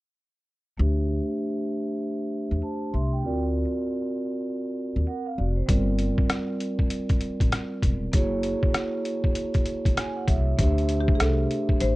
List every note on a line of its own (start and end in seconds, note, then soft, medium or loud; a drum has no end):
0.77 1.19 D2 medium
0.77 3.19 A3 medium
0.77 3.19 D4 medium
0.77 3.20 G4 medium
0.77 2.59 C5 medium
0.77 2.60 E5 medium
2.51 2.60 E2 medium
2.63 2.92 C5 soft
2.63 2.92 A5 medium
2.93 3.24 C2 medium
2.93 3.11 E5 medium
2.93 3.11 C6 medium
3.13 3.41 G5 medium
3.23 3.64 D2 loud
3.23 5.64 C4 medium
3.23 5.04 F4 medium
3.23 5.04 F#4 medium
3.23 5.04 A#4 medium
3.23 5.05 D5 medium
4.96 5.05 D#2 medium
5.07 5.26 A#4 medium
5.07 5.25 F#5 medium
5.26 5.37 F5 medium
5.38 5.63 F1 medium
5.38 5.56 F#4 medium
5.38 5.56 D5 medium
5.56 5.86 C5 medium
5.66 6.09 G1 medium
5.66 8.08 G3 medium
5.66 8.09 C4 medium
5.66 8.09 F4 medium
5.66 8.09 A#4 medium
5.66 8.10 D5 medium
5.66 kick medium
5.66 closed hi-hat medium
5.99 closed hi-hat medium
6.18 kick medium
6.30 cross-stick loud
6.30 closed hi-hat medium
6.60 closed hi-hat medium
6.79 kick medium
6.90 closed hi-hat medium
7.09 kick medium
7.09 closed hi-hat soft
7.21 closed hi-hat medium
7.40 7.50 A1 medium
7.40 kick medium
7.40 closed hi-hat medium
7.52 cross-stick loud
7.52 closed hi-hat medium
7.83 8.08 E1 medium
7.83 kick medium
7.83 closed hi-hat medium
8.12 8.53 F#1 medium
8.12 10.54 A#3 medium
8.12 10.54 E4 medium
8.12 10.54 F#4 medium
8.12 10.55 G#4 medium
8.12 10.55 C#5 medium
8.12 kick medium
8.12 closed hi-hat medium
8.43 closed hi-hat medium
8.63 kick medium
8.74 cross-stick loud
8.74 closed hi-hat medium
9.05 closed hi-hat medium
9.24 kick medium
9.35 closed hi-hat medium
9.54 kick medium
9.54 closed hi-hat soft
9.66 closed hi-hat medium
9.85 9.95 G#1 medium
9.85 kick medium
9.85 closed hi-hat medium
9.97 10.15 G#5 medium
9.97 cross-stick loud
9.97 closed hi-hat medium
10.16 10.27 F#5 medium
10.28 10.52 C2 medium
10.28 10.56 E5 medium
10.28 kick medium
10.28 closed hi-hat medium
10.57 11.08 D2 medium
10.57 11.96 A3 medium
10.57 11.96 D4 medium
10.57 11.96 G4 medium
10.57 11.96 C5 medium
10.57 11.96 E5 medium
10.57 kick loud
10.57 closed hi-hat medium
10.78 closed hi-hat soft
10.89 closed hi-hat medium
11.01 11.15 G4 medium
11.08 kick medium
11.15 11.20 G#4 medium
11.20 11.45 C2 medium
11.20 11.83 A4 medium
11.20 cross-stick loud
11.20 closed hi-hat medium
11.51 closed hi-hat medium
11.69 kick medium
11.80 11.96 A1 medium
11.80 11.96 C5 loud
11.80 closed hi-hat medium